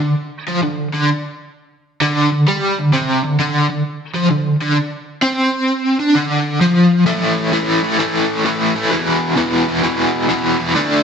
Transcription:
overdriven electric guitar
0.02 D3
0.48 F3
0.63 D3
0.94 D3
2.02 D3
2.32 D3
2.48 G3
2.79 D3
2.93 C3
3.24 D3
3.39 D3
3.70 D3
4.15 F3
4.31 D3
4.61 D3
5.22 C4
6.00 D4
6.15 D3
6.61 F3
7.06 A2 E3 A3
7.52 A2 E3 A3
7.83 A2 E3 A3
7.98 A2 E3 A3
8.45 A2 E3 A3
8.75 A2 E3 A3
8.91 E2 B2 E3
9.36 E2 B2 E3
9.68 E2 B2 E3
9.83 E2 B2 E3
10.29 E2 B2 E3
10.60 E2 B2 E3
10.75 D3 A3 D4

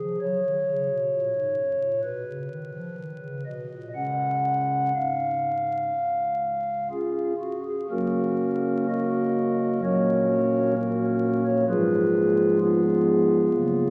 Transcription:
pipe organ
Already playing: G#4
0.00 F3
0.21 F#3 C#5
0.44 D#3
0.67 C#3
0.89 B2
1.12 A#2
1.35 G#2
1.58 F#2
1.80 A#2
2.03 B2 B4
2.26 C#3
2.49 D#3
2.74 F3
2.98 D#3
3.22 C#3
3.46 B2 D#5
3.71 A#2
3.95 C#2 C#3 C#4 F#5
4.94 G#1 G#2 F5
5.93 C#1 C#2
6.91 C#4 F4 G#4
7.41 F#4
7.65 G#4
7.90 F#1 F#2 F#3 A#3 C#4 F#4 A#4
8.89 F#4 A#4 D#5
9.83 A#1 A#2 F#3 A#3 C#4 F#4 A#4 C#5
10.76 C#4 F#4 A#4
11.45 C#5
11.69 G#1 G#2 F3 G#3 F4 G#4 B4
12.61 B3 F4 G#4
13.53 F#1 F#2 C#3 F#3 A#3

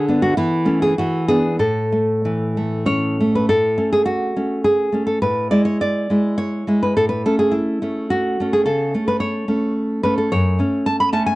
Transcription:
nylon-string guitar
Already playing: D3
0.09 B3 D4
0.22 F#4
0.37 E3 E4
0.65 A3 C#4
0.82 G#4
0.98 E3 F#4
1.28 B3 D4 G#4
1.59 A2 A4
1.92 A3
2.25 E3
2.57 A3
2.86 C#4 C#5
3.21 A3
3.35 B4
3.49 A2 A4
3.78 A3 C#4
3.93 G#4
4.06 F#4
4.36 A3 C#4
4.64 G#4
4.92 A3 C#4
5.07 A4
5.22 A2 B4
5.51 G#3 E4 D5
5.65 C#5
5.81 D5
6.10 G#3 E4
6.38 C#5
6.67 G#3 E4
6.83 B4
6.96 A2 A4
7.09 B4
7.26 A3 C#4 A4
7.39 G#4
7.51 E4
7.82 A3 C#4
8.10 F#4
8.40 A3 C#4
8.53 G#4
8.66 C#3 A4
8.94 A3 C#4
9.08 B4
9.20 C#5
9.48 A3 C#4
10.03 A3 C#4 B4
10.18 A4
10.32 F#2 C#5
10.59 A3 C#4
10.86 A5
11.00 B5
11.13 A3 C#4 A5
11.26 G#5

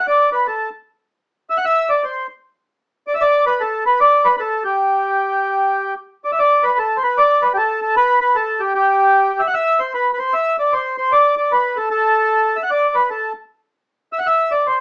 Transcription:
accordion
0.07 D5
0.32 B4
0.47 A4
1.50 E5
1.57 F#5
1.65 E5
1.89 D5
2.04 C5
3.07 D5
3.15 E5
3.21 D5
3.46 B4
3.61 A4
3.86 B4
4.01 D5
4.25 B4
4.37 A4 B4
4.64 G4
6.25 D5
6.32 E5
6.39 D5
6.63 B4
6.78 A4
6.97 C5
7.03 B4
7.18 D5
7.42 B4
7.54 G4 A4
7.82 A4
7.96 B4
8.21 B4
8.35 A4
8.60 G4
8.75 G4
9.39 E5
9.47 F#5
9.54 E5
9.79 C5
9.94 B4
10.13 B4
10.19 C5
10.34 E5
10.59 D5
10.73 C5
10.98 C5
11.12 D5
11.38 D5
11.52 B4
11.76 A4
11.91 A4
12.56 E5
12.63 F#5
12.71 D5
12.95 B4
13.10 A4
14.13 E5
14.19 F#5
14.27 E5
14.51 D5
14.67 C5

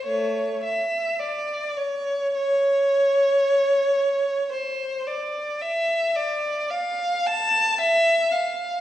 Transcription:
violin
0.05 A3 C#5
0.64 E5
1.20 D5
1.77 C#5
2.34 C#5
4.52 C5
5.07 D5
5.61 E5
6.16 D5
6.70 F5
7.26 A5
7.78 E5
8.32 F5

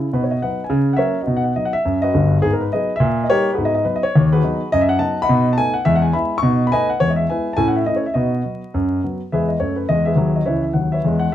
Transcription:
grand piano
0.13 B2 D#4 B4
0.23 C#5
0.31 D#5
0.42 F#3 B3 D#4 B4 D#5 F#5
0.64 G#5
0.70 C#3
0.93 E5 F#5
0.98 F#3 A#3 C#4 A#4 C#5
1.22 F#4 D#5
1.27 B2 D#4
1.37 F#5
1.44 F#5
1.56 F#3 B3 D#4 D#5
1.65 F#5
1.73 E5
1.85 F#2
2.02 F#4 B4 D#5
2.14 G1 G2
2.42 G#2 B3 G#4
2.53 A#4
2.61 B4
2.73 F#3 B3 D#4 G#4 B4 D#5
2.96 E5
3.00 A#2
3.24 D#5
3.30 G3 A#3 D#4 G4 A#4 C#5
3.53 F#4 G#4 B4
3.58 G#2 B3
3.65 D#5
3.75 D#5
3.85 F#3 B3 D#4 B4
3.96 D#5
4.03 C#5
4.16 D#2
4.33 F#4 G#4 B4
4.44 F#3 B3 D#4
4.72 F#2 D#5
4.81 E5
4.89 F#5
4.99 F#3 B3 D#4 D#5 F#5 A5
5.22 D#5 F#5 B5
5.29 B2 D#4
5.53 A5
5.58 A3 B3 D#4 G#5
5.74 F#5
5.85 E2 G#3 E5
5.96 F#5
6.02 G#5
6.13 G#3 B3 E4 E5 G#5 B5
6.38 C#6
6.43 B2 D#4
6.67 B5
6.72 A3 B3 D#4 B4 D#5 G#5
6.89 F#5
7.00 E2 G#3 C#5
7.10 D#5
7.16 E5
7.29 G#3 B3 E4 B4 E5 G#5
7.53 G#5 A5
7.57 A2 C#4
7.68 F#5
7.76 E5
7.86 A3 C#4 E4 D#5
7.96 C#5
8.06 E5
8.14 B2 D#4 F#4 B4 D#5
8.44 F#3
8.74 F#2
9.04 F#3 B3
9.32 E2 G#3 G#4 B4 E5
9.48 D#5
9.60 F#2 A3 C#5
9.76 B4
9.89 E2 G#3 D#5
10.05 G#4 B4 E5
10.16 D#2 F#3
10.36 D#5
10.45 C#2 E3 B4 C#5 E5
10.62 E5
10.73 D#2 F#3 F#5
10.92 B4 C#5 E5
11.04 E2 G#3
11.19 F#5

